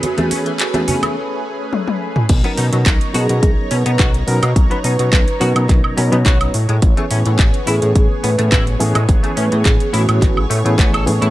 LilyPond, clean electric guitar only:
\new Staff \with { instrumentName = "Clean electric guitar" } { \time 4/4 \key b \major \tempo 4 = 106 r16 a16 cis'16 e16 r16 a16 cis'16 e16 r2 | r16 b16 dis'16 fis16 r8 fis'16 r8. cis'16 b16 fis'16 r8 ais16 | r16 b16 dis'16 fis16 r8 fis'16 r8. cis'16 b16 fis'16 r8 gis16 | r16 a16 cis'16 e16 r8 e'16 r8. b16 a16 e'16 r8 gis16 |
r16 a16 cis'16 e16 r8 e'16 r8. a16 a16 b16 a'16 r16 e'16 | }